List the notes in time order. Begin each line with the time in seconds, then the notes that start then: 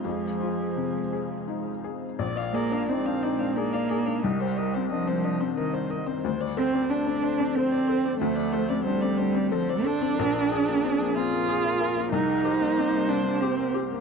Already playing: G#3 G#4 C5 F5
0.05 F2 F3 G#4
0.40 F4
0.77 C3
1.13 G#4
1.48 D#4
1.84 G#4
2.19 A#1 G#3 A#4 D5
2.36 D5 F5
2.54 A#3 G#4 D5
2.72 D4 F5
2.89 C4 D#4 D5
3.06 D4 F5
3.23 D#4 D5
3.39 D4 F5
3.56 A#3 G#4 D5
3.73 D5 F5
3.89 G#4 D5
4.06 D4 F5
4.22 C2 G3 D#5
4.40 C5
4.57 A#4 D#5
4.74 C4 C5
4.91 F3 D4 D#5
5.07 C4 C5
5.24 D4 D#5
5.41 C4 C5
5.57 D#3 A#4 D#5
5.73 C5
5.90 A#4 D#5
6.06 C4 C5
6.23 D2 F3 A4 C5
6.40 C5 D5
6.57 C4 A4 C5
6.74 C4 D5
6.90 D4 C5
7.07 C4 D5
7.23 D4 C5
7.40 C4 D5
7.55 C4 A4 C5
7.71 C5 D5
7.88 A4 C5
8.04 C4 D5
8.19 D2 A3 C5
8.36 C5 D5
8.52 A4 C5
8.69 C4 D5
8.85 G3 D4 C5
9.02 C4 D5
9.18 D4 C5
9.35 C4 D5
9.52 F3 A4 C5
9.69 C5 D5
9.84 D4 A4 C5
10.02 C4 D5
10.18 A#1 G#4 A#4
10.35 A#4
10.50 G#4
10.68 A#3
10.84 C4
11.02 A#3
11.15 C4 F4
11.32 A#3
11.48 G#4
11.64 A#4
11.81 G#4 A#4
11.97 A#3
12.12 C2 G3 D#4 G4 A#4
12.29 A#4
12.45 G4 C5
12.61 A#3
12.78 C4
12.93 A#3
13.09 C4 D4
13.25 A#3
13.41 C4 G4
13.59 A#4
13.74 G4
13.92 A#3